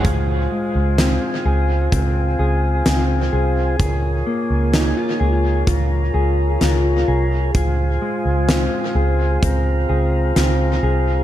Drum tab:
HH |x-x-x-x-|x-x-x-x-|x-x-x-x-|
SD |--o---o-|--o---o-|--o---o-|
BD |o---o---|o---o---|o---o---|